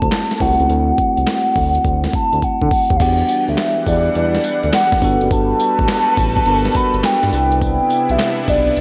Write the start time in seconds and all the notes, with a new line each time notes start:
Already playing: A3 C4 E4 F#4 A5
0.02 D2, kick, closed hi-hat
0.12 snare, clap, closed hi-hat
0.31 snare
0.40 C2 A3 C4 E4 F#4 F#5, kick, open hi-hat
0.59 C#2, closed hi-hat
0.69 D2, closed hi-hat
0.98 kick, closed hi-hat
1.17 C2, closed hi-hat
1.27 snare, clap, closed hi-hat
1.56 D2, kick, open hi-hat
1.75 closed hi-hat
1.84 D2, kick, closed hi-hat
2.04 snare
2.13 A5, kick, closed hi-hat
2.33 D2, closed hi-hat
2.42 F#5, kick, closed hi-hat
2.62 D3, kick
2.71 kick, open hi-hat
2.90 D#2, kick, closed hi-hat
2.97 E2 E3 G3 B3 D4 F5 F#5, kick, closed hi-hat, crash, tambourine
3.01 F#4 G4 F#5
3.29 closed hi-hat, tambourine
3.48 D2 E5, closed hi-hat
3.58 snare, clap, closed hi-hat, tambourine
3.86 E2 D5, kick, open hi-hat, tambourine
4.06 closed hi-hat
4.15 E2 D5, closed hi-hat
4.35 snare
4.44 closed hi-hat, tambourine
4.63 D2, closed hi-hat
4.73 F#5, snare, clap, closed hi-hat, tambourine
4.92 kick, snare
5.02 G1 G3 B3 D4 F#4 A4 B4, kick, closed hi-hat, tambourine
5.21 F#1, closed hi-hat
5.31 G1 A5, kick, closed hi-hat, tambourine
5.60 closed hi-hat, tambourine
5.79 A1, kick, closed hi-hat
5.88 snare, clap, closed hi-hat, tambourine
6.17 A1, kick, open hi-hat, tambourine
6.37 kick, closed hi-hat
6.46 G1 B3 D4 F#4 A#4, closed hi-hat
6.54 B4
6.65 snare
6.75 B5, kick, closed hi-hat, tambourine
6.94 G1, closed hi-hat
7.04 G5, snare, clap, closed hi-hat, tambourine
7.23 G2, snare
7.32 C2 C3 B3 D4 E4 G4 B4, closed hi-hat, tambourine
7.52 closed hi-hat
7.62 G5, kick, closed hi-hat, tambourine
7.90 closed hi-hat, tambourine
8.09 B1 E5, closed hi-hat
8.19 snare, clap, closed hi-hat, tambourine
8.48 B1 D5, kick, open hi-hat, tambourine
8.67 closed hi-hat
8.77 C2, closed hi-hat